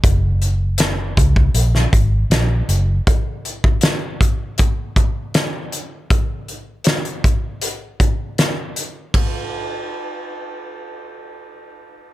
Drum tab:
RD |----------------|----------------|----------------|x---------------|
HH |x-x-x-x-x-x-x-x-|x-x-x-x-x-x-x-x-|x-x-xxx-x-x-x-x-|----------------|
SD |----o----o--o---|----o-------o---|----o-------o---|----------------|
BD |o-----oo--o-----|o--o--o-o-o-----|o-----o---o-----|o---------------|